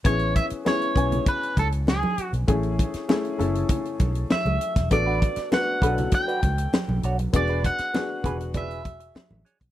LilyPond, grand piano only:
\new Staff \with { instrumentName = "Grand piano" } { \time 4/4 \key a \major \tempo 4 = 99 <b cis' e' gis'>4 <b cis' e' gis'>8 <b cis' e' gis''>4. r4 | <a cis' e' gis'>4 <a cis' e' gis'>8 <a cis' e' a'>4. r4 | <b d' fis' a'>4 <b d' fis' b'>8 <fis b d' a'>4. r4 | <b d' fis' gis'>4 <b d' fis' gis'>8 <b d' fis' gis'>4. r4 | }